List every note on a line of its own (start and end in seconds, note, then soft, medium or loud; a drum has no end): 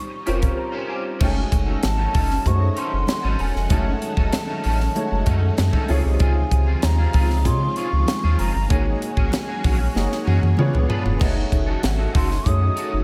0.00 1.18 G3 medium
0.00 0.26 C4 medium
0.00 0.26 C#4 medium
0.00 1.18 D#4 medium
0.00 0.27 F4 medium
0.00 0.27 G4 medium
0.00 0.28 A#4 medium
0.00 0.59 C#6 loud
0.10 muted clean electric guitar stroke medium
0.26 0.51 F1 medium
0.26 1.12 C4 medium
0.26 0.48 C#4 medium
0.26 1.13 C#4 medium
0.26 1.13 F4 medium
0.26 0.42 G4 medium
0.26 1.13 G4 medium
0.26 1.13 A#4 loud
0.26 0.40 C5 loud
0.26 closed hi-hat medium
0.41 muted clean electric guitar stroke medium
0.41 kick medium
0.41 closed hi-hat medium
0.57 0.87 A#5 medium
0.57 muted clean electric guitar stroke soft
0.72 0.86 C#4 medium
0.72 0.87 G4 medium
0.72 0.88 C5 medium
0.87 1.05 C#4 medium
0.87 1.04 G4 medium
0.87 1.03 C5 medium
0.87 1.18 G#5 medium
1.04 muted clean electric guitar stroke medium
1.19 1.44 F#1 loud
1.19 8.67 D#3 medium
1.19 5.86 F#3 medium
1.19 2.36 G#3 medium
1.19 2.35 A3 medium
1.19 1.41 C#4 medium
1.19 5.86 C#4 medium
1.19 1.35 D#4 loud
1.19 2.35 D#4 medium
1.19 5.86 D#4 medium
1.19 5.85 F#4 medium
1.19 2.35 F#4 medium
1.19 1.34 A4 loud
1.19 2.36 C#5 medium
1.19 kick loud
1.19 crash loud
1.19 muted conga soft
1.23 1.86 G#5 loud
1.35 muted clean electric guitar stroke soft
1.51 1.75 F#1 medium
1.51 muted clean electric guitar stroke soft
1.51 kick loud
1.51 closed hi-hat medium
1.66 1.81 C#4 soft
1.66 1.81 D#4 medium
1.66 1.82 A4 medium
1.82 2.07 G#1 medium
1.82 2.49 A5 medium
1.82 muted clean electric guitar stroke soft
1.82 snare loud
1.82 closed hi-hat loud
1.82 high conga medium
1.97 2.12 C#4 medium
1.97 2.13 D#4 medium
1.97 2.14 A4 medium
2.13 2.38 F#1 loud
2.13 2.35 C#4 medium
2.13 2.29 D#4 loud
2.13 2.27 A4 loud
2.13 kick loud
2.13 open hi-hat medium
2.29 muted clean electric guitar stroke soft
2.29 snare soft
2.45 2.69 F#2 loud
2.45 3.60 A3 medium
2.45 3.60 D#4 medium
2.45 3.60 F#4 medium
2.45 3.60 G#4 medium
2.45 2.52 C5 medium
2.45 2.79 C#6 loud
2.45 kick medium
2.45 closed hi-hat medium
2.45 muted conga soft
2.53 3.64 C#5 medium
2.60 muted clean electric guitar stroke soft
2.76 2.98 C#4 medium
2.76 2.92 D#4 medium
2.76 2.91 A4 loud
2.76 3.42 C6 loud
2.76 closed hi-hat medium
2.92 3.04 F#1 medium
2.92 muted clean electric guitar stroke medium
3.07 muted clean electric guitar stroke soft
3.07 snare loud
3.07 closed hi-hat medium
3.07 high conga medium
3.23 3.36 G#1 medium
3.23 3.37 C#4 medium
3.23 3.38 D#4 medium
3.23 3.39 A4 medium
3.23 high conga medium
3.38 3.51 E1 medium
3.38 3.56 C#4 medium
3.38 3.54 D#4 medium
3.38 3.53 A4 medium
3.38 3.74 G#5 medium
3.38 open hi-hat medium
3.54 3.67 F1 medium
3.54 muted clean electric guitar stroke soft
3.54 snare soft
3.69 3.94 F#1 loud
3.69 4.85 G#3 medium
3.69 4.85 A3 medium
3.69 3.92 C#4 medium
3.69 4.85 D#4 medium
3.69 3.85 D#4 medium
3.69 4.85 F#4 medium
3.69 3.84 A4 loud
3.69 4.86 C#5 medium
3.69 5.90 A5 loud
3.69 kick loud
3.69 closed hi-hat medium
3.69 muted conga soft
3.85 muted clean electric guitar stroke medium
4.01 muted clean electric guitar stroke soft
4.01 closed hi-hat medium
4.17 4.29 F#1 medium
4.17 4.32 C#4 soft
4.17 4.32 D#4 medium
4.17 4.33 A4 medium
4.17 kick medium
4.33 muted clean electric guitar stroke soft
4.33 snare loud
4.33 closed hi-hat loud
4.33 high conga medium
4.48 4.62 C#4 soft
4.48 4.63 D#4 medium
4.48 4.63 A4 medium
4.63 4.88 A1 loud
4.63 4.85 C#4 medium
4.63 4.79 D#4 medium
4.63 4.77 A4 medium
4.63 open hi-hat medium
4.79 muted clean electric guitar stroke medium
4.79 snare soft
4.95 5.89 G#3 medium
4.95 5.89 A3 medium
4.95 5.87 D#4 medium
4.95 5.89 F#4 medium
4.95 5.88 C#5 medium
4.95 closed hi-hat medium
4.95 muted conga medium
5.10 5.23 F#1 medium
5.10 muted clean electric guitar stroke soft
5.26 5.50 F#2 loud
5.26 5.48 C#4 medium
5.26 5.41 D#4 loud
5.26 5.40 A4 medium
5.26 kick medium
5.26 closed hi-hat medium
5.41 muted clean electric guitar stroke medium
5.57 5.70 F#2 loud
5.57 muted clean electric guitar stroke soft
5.57 snare loud
5.57 closed hi-hat medium
5.57 high conga medium
5.73 5.88 C#4 medium
5.73 5.89 D#4 medium
5.73 5.90 A4 medium
5.73 kick medium
5.73 high conga medium
5.87 6.01 C#2 loud
5.87 7.04 C3 medium
5.87 8.67 F3 medium
5.87 11.16 G#3 medium
5.87 6.06 C4 medium
5.87 7.04 D#4 medium
5.87 8.67 F4 medium
5.87 7.04 F4 medium
5.87 6.04 F4 medium
5.87 7.04 G#4 medium
5.87 6.03 G#4 medium
5.87 7.04 C#5 loud
5.87 open hi-hat medium
6.04 6.17 C2 medium
6.04 muted clean electric guitar stroke medium
6.19 6.44 C#2 medium
6.19 6.42 C4 medium
6.19 6.35 F4 medium
6.19 6.34 G#4 loud
6.19 6.85 G#5 medium
6.19 kick loud
6.19 closed hi-hat medium
6.19 muted conga soft
6.35 muted clean electric guitar stroke medium
6.51 6.75 C#2 loud
6.51 muted clean electric guitar stroke soft
6.51 kick medium
6.51 closed hi-hat medium
6.67 6.82 C4 medium
6.67 6.83 F4 medium
6.67 6.84 G#4 medium
6.82 7.07 D#2 medium
6.82 7.47 A#5 medium
6.82 muted clean electric guitar stroke soft
6.82 snare loud
6.82 closed hi-hat loud
6.82 high conga medium
6.98 7.13 C4 medium
6.98 7.14 F4 medium
6.98 7.15 G#4 medium
7.13 7.47 C#2 loud
7.13 7.36 C4 medium
7.13 7.30 F4 medium
7.13 7.29 G#4 medium
7.13 kick loud
7.13 open hi-hat medium
7.30 muted clean electric guitar stroke medium
7.30 snare soft
7.45 7.69 C#3 loud
7.45 8.60 C#4 medium
7.45 8.60 D#4 medium
7.45 8.60 F4 medium
7.45 8.60 G#4 medium
7.45 8.60 C#5 medium
7.45 7.78 C6 loud
7.45 muted clean electric guitar stroke soft
7.45 kick medium
7.45 closed hi-hat medium
7.45 muted conga soft
7.61 muted clean electric guitar stroke medium
7.76 7.98 C4 medium
7.76 7.92 F4 medium
7.76 7.91 G#4 medium
7.76 8.41 C#6 loud
7.76 closed hi-hat medium
7.92 8.04 C#2 medium
7.92 muted clean electric guitar stroke soft
8.07 muted clean electric guitar stroke soft
8.07 snare loud
8.07 closed hi-hat medium
8.07 high conga medium
8.23 8.36 D#2 medium
8.23 8.38 C4 medium
8.23 8.39 F4 medium
8.23 8.40 G#4 medium
8.23 high conga medium
8.39 8.51 F#1 medium
8.39 8.56 C4 medium
8.39 8.54 F4 medium
8.39 8.53 G#4 medium
8.39 8.73 A#5 loud
8.39 open hi-hat medium
8.54 8.67 G1 loud
8.54 muted clean electric guitar stroke soft
8.69 8.94 G#1 medium
8.69 10.56 D#3 medium
8.69 10.56 F#3 medium
8.69 9.85 A#3 medium
8.69 8.92 C#4 medium
8.69 9.85 D#4 medium
8.69 10.56 F#4 medium
8.69 9.85 F#4 medium
8.69 8.86 F#4 medium
8.69 9.85 G#4 medium
8.69 8.84 G#4 medium
8.69 11.18 C#5 medium
8.69 9.85 C#5 medium
8.69 10.90 G#5 medium
8.69 kick loud
8.69 closed hi-hat medium
8.69 muted conga medium
8.86 muted clean electric guitar stroke soft
9.01 muted clean electric guitar stroke soft
9.01 closed hi-hat medium
9.17 9.29 G#1 loud
9.17 9.31 C#4 medium
9.17 9.32 F#4 medium
9.17 9.33 G#4 medium
9.17 kick medium
9.32 muted clean electric guitar stroke soft
9.32 snare loud
9.32 closed hi-hat medium
9.32 high conga medium
9.48 9.62 C#4 soft
9.48 9.64 F#4 medium
9.48 9.64 G#4 medium
9.64 9.88 A#1 medium
9.64 9.86 C#4 medium
9.64 9.79 F#4 medium
9.64 9.78 G#4 loud
9.64 kick loud
9.64 open hi-hat medium
9.79 muted clean electric guitar stroke medium
9.95 10.07 F#1 loud
9.95 10.58 A#3 medium
9.95 10.58 D#4 medium
9.95 10.58 F#4 medium
9.95 10.57 G#4 medium
9.95 10.58 C#5 medium
9.95 snare medium
9.95 muted conga medium
10.10 muted clean electric guitar stroke soft
10.10 snare soft
10.25 10.39 F#2 loud
10.25 10.48 C#4 medium
10.25 10.42 F#4 medium
10.25 10.40 G#4 medium
10.25 high tom medium
10.42 10.54 F#2 medium
10.42 muted clean electric guitar stroke soft
10.42 high tom medium
10.57 10.70 C#3 loud
10.57 11.20 D3 medium
10.57 11.20 B3 medium
10.57 11.15 B3 loud
10.57 11.16 D4 medium
10.57 11.20 F4 medium
10.57 11.16 F4 medium
10.57 11.16 G#4 medium
10.57 11.16 C#5 loud
10.57 mid tom medium
10.57 high conga medium
10.73 10.86 C#2 medium
10.73 muted clean electric guitar stroke medium
10.73 mid tom medium
10.73 high conga medium
10.88 11.10 D4 medium
10.88 11.04 F4 medium
10.88 11.03 B4 medium
10.88 floor tom loud
11.04 11.17 F1 loud
11.04 muted clean electric guitar stroke soft
11.04 floor tom medium
11.20 11.44 F#1 loud
11.20 13.04 D#3 medium
11.20 13.04 F#3 medium
11.20 13.04 A3 medium
11.20 12.35 A3 medium
11.20 13.04 C#4 medium
11.20 11.42 D#4 medium
11.20 12.35 D#4 medium
11.20 13.04 F#4 medium
11.20 11.36 F#4 medium
11.20 12.36 F#4 medium
11.20 12.36 G#4 medium
11.20 11.35 A4 medium
11.20 12.36 C#5 medium
11.20 kick loud
11.20 crash medium
11.20 muted conga soft
11.36 muted clean electric guitar stroke soft
11.51 11.75 F#1 medium
11.51 muted clean electric guitar stroke soft
11.51 kick medium
11.51 closed hi-hat medium
11.51 muted conga soft
11.66 11.81 D#4 medium
11.66 11.82 F#4 medium
11.66 11.83 A4 medium
11.82 12.07 G#1 medium
11.82 muted clean electric guitar stroke soft
11.82 snare loud
11.82 closed hi-hat loud
11.82 high conga medium
11.98 12.12 D#4 soft
11.98 12.13 F#4 medium
11.98 12.14 A4 medium
12.13 12.38 F#1 medium
12.13 12.35 D#4 medium
12.13 12.30 F#4 medium
12.13 12.28 A4 loud
12.13 12.49 C6 medium
12.13 kick loud
12.13 open hi-hat medium
12.30 muted clean electric guitar stroke medium
12.30 snare soft
12.45 12.69 F#2 medium
12.45 13.04 A3 medium
12.45 13.04 D#4 medium
12.45 13.04 F#4 medium
12.45 13.04 G#4 medium
12.45 13.04 C#5 medium
12.45 13.04 D#6 medium
12.45 kick medium
12.45 closed hi-hat medium
12.45 muted conga soft
12.61 muted clean electric guitar stroke soft
12.76 12.98 D#4 medium
12.76 12.93 F#4 medium
12.76 12.91 A4 loud
12.76 closed hi-hat medium
12.93 13.04 F#1 medium
12.93 muted clean electric guitar stroke soft